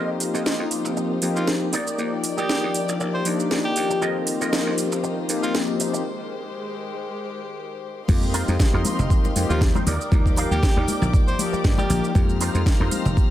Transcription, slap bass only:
0.00 0.28 F2 loud
0.34 0.42 F2 medium
0.59 0.68 F2 loud
0.85 0.93 F1 medium
1.22 1.32 F2 medium
1.36 1.67 D#2 medium
1.73 1.83 D#2 medium
1.98 2.31 D#2 loud
2.38 2.46 D#2 medium
2.63 2.71 D#2 loud
2.75 muted slap bass stroke soft
2.89 2.97 A#1 medium
3.00 3.19 A#1 medium
3.26 3.44 D#2 loud
3.51 3.61 D#2 medium
3.77 3.95 D#2 medium
4.02 4.35 F2 loud
4.41 4.49 F2 medium
4.67 4.75 F2 loud
4.92 5.00 F1 loud
5.29 5.39 F2 medium
5.43 5.80 D#2 medium
5.80 5.90 A#2 medium
8.09 8.41 F2 loud
8.48 8.56 F2 medium
8.73 8.82 F2 loud
8.99 9.07 F1 loud
9.36 9.46 F2 medium
9.50 9.81 D#2 medium
9.87 9.96 D#2 medium
10.12 10.45 D#2 loud
10.51 10.59 D#2 medium
10.76 10.85 D#2 loud
10.88 muted slap bass stroke soft
11.02 11.10 A#1 medium
11.53 muted slap bass stroke soft
11.64 11.74 G2 medium
11.90 12.00 A#1 medium
12.15 12.48 F2 loud
12.55 12.63 F2 medium
12.80 12.88 F2 loud
13.05 13.14 F1 loud

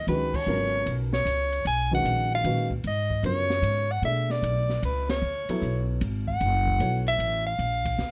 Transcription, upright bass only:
0.07 0.46 C#2 medium
0.46 0.85 G#1 medium
0.86 1.25 B1 medium
1.25 1.64 C#2 medium
1.65 2.04 B1 medium
2.04 2.43 A#1 medium
2.44 2.83 A#2 medium
2.84 3.22 G#2 medium
3.23 3.62 F#2 medium
3.62 4.01 G#2 medium
4.02 4.41 B2 medium
4.42 4.81 B1 medium
4.82 5.21 C#2 medium
5.22 5.46 D2 medium
5.49 muted upright bass stroke soft
5.62 6.00 B1 medium
6.01 6.39 G#1 medium
6.41 6.79 F#1 medium
6.80 7.18 B1 medium
7.18 7.57 A1 medium
7.59 7.97 A#1 medium
7.98 8.11 D2 medium

